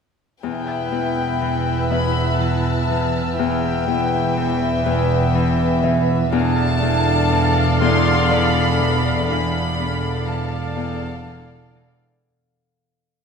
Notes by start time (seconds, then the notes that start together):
0.42 E1 E2 B3 E4 B4 E5 G5 B5 F#6
0.92 E2
1.41 E3 E6
1.90 E2 E5 B5
2.40 E3 A5
2.90 E3
2.99 F6
3.38 E1 E2 E3 B3 E4 B4 E5 G5
3.88 E2
4.37 E3
4.86 E2
5.34 E3
5.83 E3 E5
6.32 E1 E2 D4 A4 D5 F5 A5
6.82 E2
7.32 E3
7.81 E2 C6
8.31 E3 D5 B5
8.81 E3
9.29 E1 E2 D4 A4 D5 F5 B5
9.79 E2
10.27 E3 A5
10.76 E2
11.26 E3
11.75 E3